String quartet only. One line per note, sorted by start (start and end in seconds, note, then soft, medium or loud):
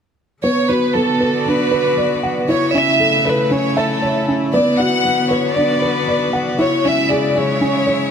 0.43 2.49 D3 medium
0.64 3.31 B3 medium
0.95 3.19 F#4 medium
1.37 2.49 D5 medium
2.49 4.54 C#3 medium
2.67 5.36 E4 medium
2.89 4.54 A3 medium
3.42 4.54 C#5 medium
4.54 6.59 D3 medium
4.66 7.36 B3 medium
4.75 7.41 F#4 medium
5.47 6.59 D5 medium
6.60 8.11 C#3 medium
6.80 8.11 G#3 medium
6.91 8.11 E4 medium
7.51 8.11 C#5 medium